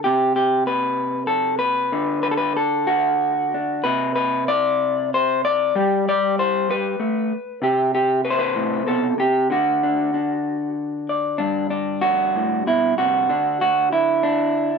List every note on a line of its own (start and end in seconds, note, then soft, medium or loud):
0.04 1.90 C3 medium
0.04 0.35 G4 medium
0.36 0.67 G4 medium
0.67 1.27 B4 medium
1.27 1.58 A4 medium
1.59 2.22 B4 medium
1.92 3.85 D3 medium
2.23 2.31 B4 medium
2.31 2.37 A4 medium
2.37 2.56 B4 medium
2.57 3.53 A4 medium
2.87 3.84 F#4 medium
3.54 3.82 D4 soft
3.84 5.72 C3 medium
3.84 4.14 B4 medium
4.16 4.48 B4 medium
4.48 5.13 D5 medium
5.14 5.44 C5 medium
5.45 6.07 D5 loud
5.75 6.68 G3 medium
5.75 6.70 G4 soft
6.09 6.39 D5 medium
6.39 6.70 C5 medium
6.69 6.99 G3 medium
6.69 7.63 B4 medium
7.00 7.31 A3 medium
7.62 9.17 C3 medium
7.62 7.93 G4 medium
7.95 8.24 G4 medium
8.25 8.38 B4 medium
8.30 9.00 C5 medium
8.39 8.87 B4 medium
8.55 8.86 A2 medium
8.87 9.18 B2 medium
8.87 9.19 A4 medium
9.18 9.50 C3 medium
9.18 9.51 G4 medium
9.50 13.28 D3 medium
9.50 11.38 F#4 medium
9.83 10.13 D4 soft
10.14 11.37 D4 soft
11.09 11.37 D5 soft
11.38 13.25 G2 medium
11.38 11.69 D4 medium
11.70 12.66 D4 medium
12.01 12.66 F#4 medium
12.36 12.67 A2 medium
12.67 12.98 B2 medium
12.67 12.98 E4 medium
12.98 13.30 C3 medium
12.98 13.60 F#4 medium
13.29 14.78 D3 medium
13.29 14.22 D4 soft
13.61 13.92 F#4 medium
13.93 14.78 E4 medium
14.23 14.78 D4 medium